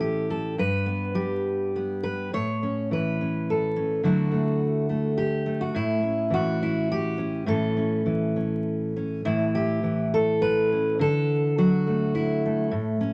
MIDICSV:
0, 0, Header, 1, 2, 480
1, 0, Start_track
1, 0, Tempo, 583090
1, 474, Time_signature, 3, 2, 24, 8
1, 2401, Tempo, 564972
1, 5761, Tempo, 591716
1, 8641, Tempo, 573614
1, 10909, End_track
2, 0, Start_track
2, 0, Title_t, "Steel-string acoustic guitar"
2, 0, Program_c, 0, 25
2, 0, Note_on_c, 0, 45, 70
2, 0, Note_on_c, 0, 52, 60
2, 0, Note_on_c, 0, 61, 50
2, 0, Note_on_c, 0, 69, 95
2, 3, Note_on_c, 0, 67, 73
2, 239, Note_off_c, 0, 69, 0
2, 249, Note_on_c, 0, 69, 80
2, 450, Note_off_c, 0, 45, 0
2, 454, Note_off_c, 0, 61, 0
2, 475, Note_off_c, 0, 67, 0
2, 477, Note_off_c, 0, 52, 0
2, 479, Note_off_c, 0, 69, 0
2, 479, Note_on_c, 0, 43, 77
2, 487, Note_on_c, 0, 71, 95
2, 708, Note_on_c, 0, 59, 45
2, 943, Note_on_c, 0, 55, 55
2, 948, Note_on_c, 0, 67, 80
2, 1433, Note_off_c, 0, 59, 0
2, 1440, Note_off_c, 0, 71, 0
2, 1447, Note_on_c, 0, 59, 46
2, 1674, Note_on_c, 0, 71, 84
2, 1891, Note_off_c, 0, 55, 0
2, 1895, Note_off_c, 0, 43, 0
2, 1899, Note_off_c, 0, 59, 0
2, 1919, Note_off_c, 0, 71, 0
2, 1920, Note_on_c, 0, 45, 75
2, 1921, Note_off_c, 0, 67, 0
2, 1925, Note_on_c, 0, 73, 109
2, 2164, Note_on_c, 0, 61, 45
2, 2397, Note_on_c, 0, 52, 58
2, 2403, Note_off_c, 0, 73, 0
2, 2413, Note_on_c, 0, 71, 83
2, 2640, Note_off_c, 0, 61, 0
2, 2650, Note_on_c, 0, 61, 39
2, 2898, Note_on_c, 0, 69, 84
2, 3110, Note_off_c, 0, 61, 0
2, 3120, Note_on_c, 0, 61, 46
2, 3331, Note_off_c, 0, 61, 0
2, 3332, Note_off_c, 0, 45, 0
2, 3351, Note_on_c, 0, 50, 71
2, 3355, Note_off_c, 0, 52, 0
2, 3358, Note_on_c, 0, 54, 50
2, 3364, Note_off_c, 0, 69, 0
2, 3364, Note_on_c, 0, 57, 48
2, 3365, Note_off_c, 0, 71, 0
2, 3367, Note_on_c, 0, 64, 46
2, 3369, Note_on_c, 0, 66, 79
2, 3585, Note_off_c, 0, 57, 0
2, 3589, Note_on_c, 0, 57, 44
2, 3836, Note_off_c, 0, 54, 0
2, 4077, Note_off_c, 0, 57, 0
2, 4080, Note_on_c, 0, 57, 43
2, 4317, Note_off_c, 0, 64, 0
2, 4320, Note_on_c, 0, 67, 84
2, 4321, Note_off_c, 0, 66, 0
2, 4558, Note_off_c, 0, 57, 0
2, 4561, Note_on_c, 0, 57, 48
2, 4680, Note_off_c, 0, 67, 0
2, 4688, Note_on_c, 0, 66, 79
2, 4765, Note_off_c, 0, 50, 0
2, 4803, Note_off_c, 0, 66, 0
2, 4803, Note_on_c, 0, 45, 85
2, 4815, Note_on_c, 0, 64, 92
2, 5039, Note_off_c, 0, 57, 0
2, 5042, Note_on_c, 0, 61, 45
2, 5279, Note_on_c, 0, 52, 65
2, 5307, Note_on_c, 0, 66, 93
2, 5526, Note_off_c, 0, 64, 0
2, 5553, Note_on_c, 0, 64, 79
2, 5777, Note_off_c, 0, 64, 0
2, 5798, Note_on_c, 0, 67, 96
2, 6007, Note_off_c, 0, 61, 0
2, 6008, Note_off_c, 0, 66, 0
2, 6011, Note_on_c, 0, 61, 45
2, 6238, Note_off_c, 0, 45, 0
2, 6241, Note_on_c, 0, 45, 79
2, 6245, Note_off_c, 0, 52, 0
2, 6248, Note_off_c, 0, 67, 0
2, 6248, Note_on_c, 0, 52, 50
2, 6250, Note_off_c, 0, 61, 0
2, 6253, Note_on_c, 0, 61, 55
2, 6257, Note_on_c, 0, 69, 101
2, 6480, Note_off_c, 0, 61, 0
2, 6488, Note_on_c, 0, 61, 44
2, 6714, Note_off_c, 0, 52, 0
2, 6724, Note_on_c, 0, 52, 62
2, 6961, Note_off_c, 0, 61, 0
2, 6970, Note_on_c, 0, 61, 40
2, 7449, Note_off_c, 0, 61, 0
2, 7459, Note_on_c, 0, 61, 45
2, 7664, Note_off_c, 0, 45, 0
2, 7665, Note_off_c, 0, 61, 0
2, 7684, Note_off_c, 0, 52, 0
2, 7690, Note_on_c, 0, 45, 79
2, 7693, Note_on_c, 0, 64, 86
2, 7694, Note_on_c, 0, 52, 48
2, 7700, Note_off_c, 0, 69, 0
2, 7933, Note_on_c, 0, 67, 89
2, 8159, Note_off_c, 0, 52, 0
2, 8162, Note_on_c, 0, 52, 57
2, 8405, Note_off_c, 0, 64, 0
2, 8406, Note_off_c, 0, 67, 0
2, 8411, Note_on_c, 0, 69, 90
2, 8638, Note_on_c, 0, 71, 100
2, 8892, Note_on_c, 0, 61, 48
2, 9099, Note_off_c, 0, 45, 0
2, 9101, Note_off_c, 0, 61, 0
2, 9119, Note_on_c, 0, 50, 75
2, 9124, Note_off_c, 0, 69, 0
2, 9125, Note_off_c, 0, 71, 0
2, 9134, Note_on_c, 0, 69, 111
2, 9606, Note_off_c, 0, 52, 0
2, 9610, Note_off_c, 0, 69, 0
2, 9610, Note_on_c, 0, 54, 63
2, 9614, Note_on_c, 0, 66, 96
2, 9854, Note_on_c, 0, 57, 45
2, 10086, Note_on_c, 0, 64, 73
2, 10330, Note_off_c, 0, 57, 0
2, 10343, Note_on_c, 0, 57, 51
2, 10533, Note_off_c, 0, 50, 0
2, 10538, Note_off_c, 0, 54, 0
2, 10558, Note_on_c, 0, 45, 75
2, 10564, Note_off_c, 0, 64, 0
2, 10569, Note_off_c, 0, 66, 0
2, 10800, Note_off_c, 0, 57, 0
2, 10804, Note_on_c, 0, 61, 50
2, 10909, Note_off_c, 0, 45, 0
2, 10909, Note_off_c, 0, 61, 0
2, 10909, End_track
0, 0, End_of_file